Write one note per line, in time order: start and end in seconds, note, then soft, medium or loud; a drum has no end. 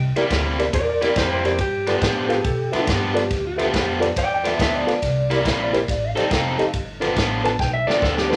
0.00 0.14 C2 medium
0.00 0.17 G5 medium
0.16 0.30 C3 medium
0.16 0.30 G3 medium
0.16 0.31 A#3 medium
0.16 0.23 E4 medium
0.16 0.31 E4 medium
0.16 0.24 G4 medium
0.16 0.24 A#4 medium
0.16 0.24 D5 loud
0.16 0.59 G5 medium
0.16 muted upright bass stroke soft
0.16 snare soft
0.16 ride medium
0.30 0.72 D2 medium
0.30 0.64 C3 medium
0.30 0.64 G3 medium
0.30 0.64 A#3 medium
0.30 0.64 E4 medium
0.30 kick medium
0.30 snare medium
0.30 ride medium
0.59 0.66 E4 medium
0.59 0.66 G4 medium
0.59 0.67 A#4 medium
0.59 0.67 D5 medium
0.59 snare soft
0.59 ride medium
0.73 1.15 E2 medium
0.73 0.88 A#4 medium
0.73 0.88 D5 medium
0.73 kick medium
0.73 ride medium
0.89 1.02 A#4 medium
0.89 1.03 D5 medium
1.01 1.15 C3 medium
1.01 1.15 G3 medium
1.01 1.16 A#3 medium
1.01 1.09 E4 medium
1.01 1.16 E4 medium
1.01 1.09 G4 medium
1.01 1.09 A#4 medium
1.01 1.16 A#4 medium
1.01 1.10 D5 medium
1.01 1.17 D5 medium
1.01 snare soft
1.01 ride medium
1.16 1.58 F2 medium
1.16 1.49 C3 medium
1.16 1.49 G3 medium
1.16 1.50 A#3 medium
1.16 1.50 E4 medium
1.16 1.30 G4 medium
1.16 1.31 C5 medium
1.16 kick medium
1.16 snare loud
1.16 ride medium
1.32 1.44 G4 medium
1.32 1.44 C5 medium
1.44 1.52 E4 medium
1.44 1.52 G4 medium
1.44 1.59 G4 medium
1.44 1.52 A#4 medium
1.44 1.59 C5 medium
1.44 1.52 D5 medium
1.44 snare soft
1.44 ride medium
1.58 2.00 G2 medium
1.58 2.85 G4 medium
1.58 kick medium
1.58 ride medium
1.87 2.00 G2 medium
1.87 2.01 F3 medium
1.87 2.02 B3 medium
1.87 2.02 D4 medium
1.87 1.95 F4 medium
1.87 1.95 A4 medium
1.87 1.95 B4 medium
1.87 1.95 D5 medium
1.87 snare soft
1.87 ride medium
2.02 2.35 G2 medium
2.02 2.44 A2 loud
2.02 2.35 F3 medium
2.02 2.35 B3 medium
2.02 2.35 D4 medium
2.02 kick medium
2.02 snare loud
2.02 ride medium
2.29 2.37 F4 medium
2.29 2.37 A4 medium
2.29 2.37 B4 medium
2.29 2.38 F5 loud
2.29 snare soft
2.29 ride medium
2.33 2.95 A4 medium
2.44 2.71 B2 medium
2.44 kick medium
2.44 ride medium
2.72 2.86 G2 medium
2.72 2.87 F3 medium
2.72 2.87 B3 medium
2.72 2.87 D4 medium
2.72 2.80 F4 medium
2.72 2.80 A4 medium
2.72 2.80 B4 medium
2.72 2.80 E5 medium
2.72 muted upright bass stroke soft
2.72 snare soft
2.72 ride medium
2.87 3.21 G2 medium
2.87 3.29 G2 medium
2.87 3.21 F3 medium
2.87 3.21 B3 medium
2.87 3.21 D4 medium
2.87 kick medium
2.87 snare loud
2.87 ride medium
2.95 3.15 G4 medium
3.14 3.22 F4 medium
3.14 3.23 A4 medium
3.14 3.23 B4 medium
3.14 3.23 D5 medium
3.14 ride medium
3.18 3.31 G4 medium
3.18 snare soft
3.30 3.72 D2 medium
3.30 3.46 G4 medium
3.30 kick medium
3.30 snare soft
3.30 ride medium
3.47 4.08 G4 medium
3.57 3.72 G2 medium
3.57 3.73 F3 medium
3.57 3.73 B3 medium
3.57 3.73 D4 medium
3.57 3.65 F4 medium
3.57 3.66 A4 medium
3.57 3.66 B4 medium
3.57 3.66 E5 loud
3.57 ride medium
3.61 snare soft
3.73 4.15 F2 medium
3.73 4.06 G2 medium
3.73 4.07 F3 medium
3.73 4.07 B3 medium
3.73 4.07 D4 medium
3.73 kick medium
3.73 snare medium
3.73 ride medium
4.00 4.08 F4 medium
4.00 4.09 A4 medium
4.00 4.09 B4 medium
4.00 4.09 D5 loud
4.00 ride medium
4.04 snare soft
4.16 4.58 E2 medium
4.16 4.32 D5 medium
4.16 4.31 G5 medium
4.16 kick medium
4.16 snare soft
4.16 ride loud
4.34 4.46 D5 medium
4.34 4.47 G5 medium
4.43 4.57 G2 medium
4.43 4.58 F3 medium
4.43 4.58 B3 medium
4.43 4.59 D4 medium
4.43 4.51 F4 medium
4.43 4.52 A4 medium
4.43 4.52 B4 medium
4.43 4.59 B4 medium
4.43 4.52 D5 medium
4.43 4.60 E5 medium
4.43 snare soft
4.43 ride medium
4.59 4.86 D2 medium
4.59 4.92 G2 medium
4.59 4.92 F3 medium
4.59 4.92 B3 medium
4.59 4.93 D4 medium
4.59 4.73 B4 medium
4.59 4.75 E5 medium
4.59 kick medium
4.59 snare loud
4.59 ride medium
4.75 5.99 D5 medium
4.87 4.94 F4 medium
4.87 4.95 A4 medium
4.87 4.95 B4 medium
4.87 4.95 F5 medium
4.87 muted upright bass stroke soft
4.87 snare soft
4.87 ride medium
5.02 5.44 C2 medium
5.02 kick medium
5.02 snare soft
5.02 ride medium
5.30 5.42 C3 medium
5.30 5.43 G3 medium
5.30 5.43 A#3 medium
5.30 5.37 E4 medium
5.30 5.43 E4 medium
5.30 5.38 G4 medium
5.30 5.38 A#4 medium
5.30 5.38 D5 medium
5.30 snare soft
5.30 ride medium
5.44 5.87 A#1 loud
5.44 5.77 C3 medium
5.44 5.77 G3 medium
5.44 5.77 A#3 medium
5.44 5.78 E4 medium
5.44 kick medium
5.44 snare loud
5.44 ride medium
5.48 5.61 E5 medium
5.64 5.76 D5 medium
5.73 5.81 E4 medium
5.73 5.81 G4 medium
5.73 5.81 A#4 medium
5.73 5.81 C5 medium
5.73 5.89 F5 medium
5.73 snare soft
5.73 ride medium
5.88 6.15 A1 medium
5.88 6.03 D5 medium
5.88 kick medium
5.88 snare soft
5.88 ride medium
6.05 6.17 F5 medium
6.15 6.29 F3 medium
6.15 6.29 C4 medium
6.15 6.23 D#4 medium
6.15 6.30 D#4 medium
6.15 6.23 G4 medium
6.15 6.30 A4 medium
6.15 6.23 A4 medium
6.15 6.24 C5 medium
6.15 6.31 D5 medium
6.15 snare soft
6.15 ride medium
6.30 6.57 F1 medium
6.30 6.63 F3 medium
6.30 6.63 C4 medium
6.30 6.64 D#4 medium
6.30 6.64 A4 medium
6.30 6.73 F5 medium
6.30 kick medium
6.30 snare loud
6.30 ride medium
6.58 6.66 D#4 medium
6.58 6.66 G4 medium
6.58 6.66 A4 medium
6.58 6.66 D#5 medium
6.58 muted upright bass stroke soft
6.58 snare soft
6.58 ride soft
6.73 7.15 G1 medium
6.73 kick medium
6.73 ride medium
7.00 7.15 G2 medium
7.00 7.16 F3 medium
7.00 7.16 B3 medium
7.00 7.08 D4 medium
7.00 7.16 D4 medium
7.00 7.09 F4 medium
7.00 7.09 A4 medium
7.00 7.09 B4 loud
7.00 snare soft
7.00 ride medium
7.16 7.58 A1 medium
7.16 7.49 G2 medium
7.16 7.49 F3 medium
7.16 7.49 B3 medium
7.16 7.50 D4 medium
7.16 kick medium
7.16 snare loud
7.16 ride medium
7.44 7.52 D4 medium
7.44 7.52 F4 medium
7.44 7.52 A4 medium
7.44 7.52 B4 medium
7.44 7.60 A5 medium
7.44 snare soft
7.44 ride medium
7.59 7.86 B1 medium
7.59 7.73 G5 medium
7.59 kick loud
7.59 snare medium
7.74 7.87 E5 medium
7.87 8.00 G2 medium
7.87 8.01 F3 medium
7.87 8.02 B3 medium
7.87 7.95 D4 medium
7.87 8.01 D4 medium
7.87 7.95 F4 medium
7.87 7.95 A4 medium
7.87 8.01 D5 medium
7.87 7.95 D5 medium
7.87 muted upright bass stroke soft
7.87 snare medium
8.02 8.36 D2 medium
8.02 8.35 G2 medium
8.02 8.35 F3 medium
8.02 8.35 B3 medium
8.02 8.35 D4 medium
8.02 8.16 A4 medium
8.02 kick medium
8.02 snare medium
8.18 8.36 G4 medium
8.18 snare medium
8.30 8.36 D4 medium
8.30 8.36 F4 medium
8.30 8.36 A4 medium
8.30 8.36 B4 medium
8.30 snare medium